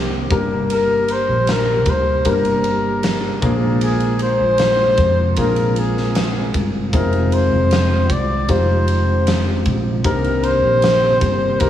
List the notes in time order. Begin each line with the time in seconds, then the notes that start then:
Already playing: C2 D#3 A#3 C4 D#4 G4 A#4
0.30 G1 G2 D3 G3 A#3 D4 G4 A#4, kick, ride
0.70 A#4, ride
1.08 C5, ride
1.28 A#1
1.47 A#4, snare, ride
1.86 D2, kick, ride
1.90 C5
2.25 G1 A#3 D4 G4 A#4, kick, ride
2.30 A#4
2.45 ride
2.64 ride
3.03 snare, ride
3.42 A#1 A#2 F3 G#3 A#3 D4 F4 G#4, kick, ride
3.81 G#4, ride
4.00 ride
4.19 C5, ride
4.40 A#1
4.58 snare, ride
4.97 F2 C4, kick, ride
5.36 A#1 A#3 D4 F4 G#4 A#4, kick, ride
5.56 ride
5.76 G#4, ride
5.97 snare
6.15 snare, ride
6.54 G1, kick, ride
6.93 F1 C3 D#3 C4 D#4 F4 G#4 A#4, kick, ride
7.13 ride
7.32 C5, ride
7.52 F1
7.71 snare, ride
8.10 C2 D5, kick, ride
8.48 F1 C4 D#4 F4 G4 C5, kick, ride
8.88 ride
9.27 snare, ride
9.65 A#1, kick, ride
10.04 C2 G2 D#3 A#3 C4 D#4 G4 A#4, kick, ride
10.24 ride
10.43 C5, ride
10.63 A#1
10.82 snare, ride
11.21 G1, kick, ride
11.60 C2 C4 D#4 G4 A#4 C5, kick, ride